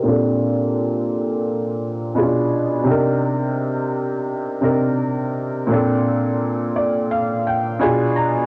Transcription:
Already playing: G4 A#4
0.03 A#2 A#3 C4
0.08 D4 A4
2.15 B2 B3 C#4 F4 G#4
2.23 D4
2.84 C3 C4 D4
2.89 D#4 A#4
4.61 C3 C4 D4 D#4 A#4
5.67 A#2 A#3 C4
5.72 D4 A4
6.76 D5
7.12 F5
7.47 G5
7.79 B2 B3 D4 F4 G#4 G#5
8.16 A#5

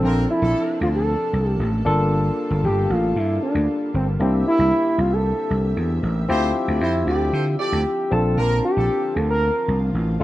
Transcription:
Already playing: C3 F3 A#3 C4 D4 A4
0.03 A#1 C4 D4 F4 A#4
0.30 E4
0.42 A#1 F3 D4 A4
0.81 D2 F4
0.95 A4
1.33 C2
1.49 G4
1.59 A1
1.85 G1 D3 G3 A#3 D4 F4 A4
2.51 G1
2.64 G1 G4
2.90 A1 F4
3.16 G2 E4
3.43 D4
3.55 D2
3.94 G1 C4
4.20 C2 D3 A#3 C4 D4 E4 G4 E5
4.48 E4
4.59 C2
4.98 C2 F4
5.13 A4
5.51 C2
5.77 E2
6.03 A1
6.29 D2 F3 C4 E4 F4 G4 A4 C5
6.68 D2 G4 A4 D5
6.81 F2 E4 G4 A4 C5
7.07 D2 G4 A4 D5
7.33 D3 G4 A4 C5
7.59 G4 A4 D5
7.72 D2
8.11 A#1 F3 A#3 C4 D4 F4 A4 A5
8.37 A#1 D4 F4 A#4
8.65 G4
8.77 A#1 D4 F4 A4
9.14 D2 G#4 A4
9.30 A#4
9.68 C2
9.94 A1
10.20 G1 G3 A3 A#3 D4

